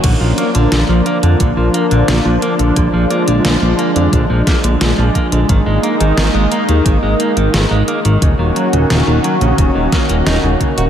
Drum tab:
CC |x---------------|----------------|----------------|----------------|
HH |x-xxx-xxx-xxx-xx|x-xxx-xxx-xxx-xx|x-xxx-xxx-xxx-xx|x-xxx-xxx-xxx-xx|
SD |----o-------o---|----o-----o-o---|----o-------o---|----o-----o-o---|
BD |o-------o-------|o-------o-o---o-|o-------o-------|o-------o-o---o-|